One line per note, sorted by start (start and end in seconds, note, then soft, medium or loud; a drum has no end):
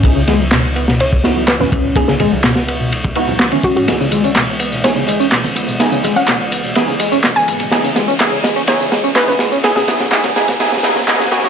0.00 1.69 C#2 loud
0.00 11.49 C#3 medium
0.00 11.49 E3 medium
0.00 11.49 G#3 medium
0.00 3.84 B3 medium
0.00 0.15 C#4 medium
0.00 3.86 E4 medium
0.00 0.16 G#5 medium
0.00 kick loud
0.04 0.15 B3 medium
0.04 0.15 D#4 medium
0.04 0.15 E4 medium
0.04 0.15 G#4 medium
0.04 ride medium
0.16 0.22 C#3 medium
0.28 0.39 G#3 loud
0.28 snare soft
0.28 ride medium
0.28 high conga loud
0.40 0.46 F#3 medium
0.51 0.61 B2 medium
0.51 snare loud
0.51 clap loud
0.51 ride medium
0.76 0.85 B3 medium
0.76 ride medium
0.88 0.99 B2 medium
0.88 snare medium
1.00 1.18 C#5 medium
1.00 ride medium
1.13 kick medium
1.24 1.35 B3 loud
1.24 1.35 D#4 medium
1.24 1.35 E4 medium
1.24 1.35 F#4 loud
1.24 snare soft
1.24 ride medium
1.36 1.42 F#3 medium
1.48 1.56 B4 medium
1.48 snare loud
1.48 clap loud
1.48 ride medium
1.60 2.07 C#4 medium
1.60 1.68 B4 medium
1.60 snare soft
1.60 high conga medium
1.60 low conga loud
1.72 2.29 C#2 medium
1.72 kick loud
1.72 ride medium
1.84 low conga medium
1.96 2.07 B3 medium
1.96 2.07 D#4 medium
1.96 2.07 E4 medium
1.96 2.07 G#4 medium
1.96 2.04 G#4 medium
1.96 kick loud
1.96 ride medium
2.08 2.13 C#3 loud
2.08 2.16 G#4 medium
2.08 snare soft
2.20 2.31 G#3 loud
2.20 ride medium
2.20 high conga loud
2.20 low conga medium
2.32 3.49 C#2 medium
2.32 2.37 F#3 medium
2.44 2.53 B2 medium
2.44 snare loud
2.44 clap loud
2.44 ride medium
2.56 snare medium
2.68 2.77 B3 medium
2.68 ride medium
2.80 2.91 B2 medium
2.92 ride medium
3.05 kick medium
3.15 3.27 B3 medium
3.15 3.27 D#4 medium
3.15 3.27 E4 medium
3.15 3.27 F#4 loud
3.15 ride medium
3.28 3.34 F#3 medium
3.28 low conga medium
3.39 snare loud
3.39 clap loud
3.39 ride medium
3.51 3.88 C#4 medium
3.51 ride soft
3.51 high conga medium
3.63 3.72 F#4 medium
3.63 kick loud
3.63 ride medium
3.76 3.86 G#1 medium
3.76 3.84 F#4 medium
3.76 ride soft
3.88 5.53 C#2 loud
3.88 11.49 A#3 medium
3.88 3.99 B3 medium
3.88 3.99 D#4 medium
3.88 3.99 E4 medium
3.88 3.99 G#4 medium
3.88 11.49 G#4 medium
3.88 snare soft
3.88 ride medium
3.88 tambourine soft
3.88 riser medium
3.88 muted conga soft
4.00 4.06 C#3 medium
4.00 tambourine soft
4.12 4.23 G#3 medium
4.12 ride medium
4.12 tambourine medium
4.12 high conga medium
4.24 4.30 C#4 medium
4.24 tambourine soft
4.24 muted conga medium
4.36 4.45 B2 medium
4.36 snare medium
4.36 clap loud
4.36 ride loud
4.36 tambourine soft
4.60 4.69 B3 medium
4.60 ride medium
4.60 tambourine medium
4.72 4.82 B2 medium
4.72 tambourine soft
4.72 muted conga soft
4.84 4.95 B3 medium
4.84 4.95 D#4 medium
4.84 4.95 E4 medium
4.84 4.95 G#4 medium
4.84 5.02 C#5 medium
4.84 snare soft
4.84 ride medium
4.84 tambourine soft
4.96 5.02 C#3 medium
4.96 tambourine soft
5.08 5.19 G#3 loud
5.08 ride medium
5.08 tambourine medium
5.08 muted conga medium
5.20 5.25 C#4 medium
5.20 tambourine soft
5.32 5.41 B2 medium
5.32 snare medium
5.32 clap loud
5.32 ride medium
5.32 tambourine soft
5.44 tambourine soft
5.44 high conga medium
5.44 low conga medium
5.55 6.13 C#2 medium
5.55 5.65 B3 medium
5.55 ride medium
5.55 tambourine medium
5.55 muted conga soft
5.68 5.78 B2 medium
5.68 tambourine soft
5.68 low conga medium
5.80 5.91 B3 medium
5.80 5.91 D#4 medium
5.80 5.91 E4 medium
5.80 5.91 G#4 medium
5.80 snare medium
5.80 ride medium
5.80 tambourine soft
5.92 5.97 C#3 medium
5.92 tambourine soft
5.92 muted conga medium
6.03 6.15 G#3 medium
6.03 ride medium
6.03 tambourine medium
6.03 high conga medium
6.03 low conga medium
6.16 7.33 C#2 medium
6.16 6.21 C#4 medium
6.16 6.34 F#5 medium
6.16 tambourine soft
6.28 6.37 B2 medium
6.28 snare medium
6.28 clap loud
6.28 ride medium
6.28 tambourine soft
6.40 muted conga medium
6.52 6.61 B3 medium
6.52 ride medium
6.52 tambourine medium
6.64 6.74 B2 medium
6.64 tambourine soft
6.75 6.87 B3 medium
6.75 6.87 D#4 medium
6.75 6.87 E4 medium
6.75 6.87 G#4 medium
6.75 snare medium
6.75 ride medium
6.75 tambourine soft
6.75 muted conga medium
6.88 6.93 C#3 medium
6.88 tambourine soft
7.00 7.11 G#3 medium
7.00 ride medium
7.00 tambourine medium
7.12 7.17 C#4 loud
7.12 tambourine soft
7.12 low conga medium
7.24 7.33 B2 medium
7.24 snare medium
7.24 clap loud
7.24 tambourine soft
7.24 muted conga medium
7.36 7.84 G#5 medium
7.36 tambourine soft
7.36 high conga medium
7.48 7.68 G#1 medium
7.48 7.57 B3 medium
7.48 ride medium
7.48 tambourine medium
7.60 7.70 B2 medium
7.60 ride soft
7.60 tambourine soft
7.60 muted conga medium
7.72 9.37 C#2 loud
7.72 7.83 B3 medium
7.72 7.83 D#4 medium
7.72 7.83 E4 medium
7.72 7.83 G#4 medium
7.72 snare medium
7.72 ride medium
7.72 tambourine soft
7.84 7.89 C#3 loud
7.84 tambourine soft
7.96 8.07 G#3 loud
7.96 snare medium
7.96 ride medium
7.96 tambourine medium
7.96 high conga loud
8.08 8.13 C#4 loud
8.08 tambourine soft
8.08 muted conga medium
8.20 8.31 B3 medium
8.20 8.31 D#4 medium
8.20 8.31 E4 medium
8.20 8.31 G#4 medium
8.20 snare medium
8.20 clap loud
8.20 ride loud
8.20 tambourine soft
8.32 8.37 C#3 medium
8.43 8.55 G#3 loud
8.43 snare medium
8.43 ride medium
8.43 tambourine medium
8.43 muted conga medium
8.56 8.61 C#4 loud
8.56 tambourine soft
8.67 8.79 B3 medium
8.67 8.79 D#4 medium
8.67 8.79 E4 medium
8.67 8.79 G#4 medium
8.67 8.86 C#5 medium
8.67 snare medium
8.67 ride medium
8.67 tambourine soft
8.80 8.85 C#3 loud
8.80 tambourine soft
8.92 9.03 G#3 loud
8.92 snare medium
8.92 ride medium
8.92 tambourine medium
8.92 muted conga medium
9.04 9.09 C#4 loud
9.04 tambourine soft
9.15 9.27 B3 medium
9.15 9.27 D#4 medium
9.15 9.27 E4 medium
9.15 9.27 G#4 medium
9.15 9.24 B4 medium
9.15 snare medium
9.15 clap loud
9.15 ride medium
9.15 tambourine soft
9.27 9.33 C#3 loud
9.27 9.36 B4 medium
9.27 tambourine soft
9.27 muted conga medium
9.27 high conga medium
9.27 low conga loud
9.39 9.97 C#2 medium
9.39 9.51 G#3 loud
9.39 snare medium
9.39 ride medium
9.39 tambourine medium
9.52 9.57 C#4 loud
9.52 tambourine soft
9.52 low conga medium
9.64 9.75 B3 medium
9.64 9.75 D#4 medium
9.64 9.75 E4 medium
9.64 9.72 G#4 medium
9.64 9.75 G#4 medium
9.64 snare medium
9.64 ride loud
9.64 tambourine soft
9.76 9.82 C#3 loud
9.76 9.84 G#4 medium
9.76 snare medium
9.76 tambourine soft
9.76 muted conga medium
9.87 9.99 B3 medium
9.87 9.99 D#4 medium
9.87 9.99 E4 medium
9.87 9.99 G#4 medium
9.87 snare loud
9.87 ride medium
9.87 tambourine medium
9.87 high conga medium
9.87 low conga medium
10.00 10.84 C#2 medium
10.00 10.05 C#3 loud
10.00 snare medium
10.00 tambourine soft
10.11 10.23 B3 medium
10.11 10.23 D#4 medium
10.11 10.23 E4 medium
10.11 10.23 G#4 medium
10.11 snare medium
10.11 clap loud
10.11 ride medium
10.11 tambourine soft
10.11 muted conga medium
10.24 10.29 C#3 loud
10.24 snare medium
10.24 ride medium
10.24 tambourine soft
10.36 10.47 B3 medium
10.36 10.47 D#4 medium
10.36 10.47 E4 medium
10.36 10.47 G#4 medium
10.36 snare loud
10.36 tambourine medium
10.48 10.53 C#3 loud
10.48 snare loud
10.48 ride medium
10.48 tambourine soft
10.48 high conga medium
10.60 10.71 B3 medium
10.60 10.71 D#4 medium
10.60 10.71 E4 medium
10.60 10.71 G#4 loud
10.60 snare loud
10.60 ride medium
10.60 tambourine soft
10.60 muted conga medium
10.65 snare medium
10.72 10.77 C#3 loud
10.72 snare loud
10.72 tambourine soft
10.77 snare medium
10.83 11.17 G#1 medium
10.83 10.95 B3 medium
10.83 10.95 D#4 medium
10.83 10.95 E4 medium
10.83 10.95 G#4 medium
10.83 snare loud
10.83 ride medium
10.83 tambourine medium
10.89 snare loud
10.95 11.01 C#3 loud
10.95 snare medium
10.95 tambourine soft
10.95 muted conga medium
10.95 low conga medium
11.02 snare medium
11.08 11.19 B3 medium
11.08 11.19 D#4 medium
11.08 11.19 E4 medium
11.08 11.19 G#4 loud
11.08 snare loud
11.08 clap loud
11.08 tambourine soft
11.14 snare medium
11.20 11.49 F#2 loud
11.20 11.25 C#3 loud
11.20 snare loud
11.20 tambourine soft
11.20 high conga medium
11.26 snare loud
11.31 11.43 B3 medium
11.31 11.43 D#4 medium
11.31 11.43 E4 medium
11.31 11.40 F#4 medium
11.31 11.43 G#4 medium
11.31 snare loud
11.31 ride medium
11.31 tambourine medium
11.38 snare loud
11.44 11.49 C#3 loud
11.44 11.49 F#4 medium
11.44 snare medium
11.44 ride soft
11.44 tambourine soft
11.44 muted conga medium
11.44 low conga medium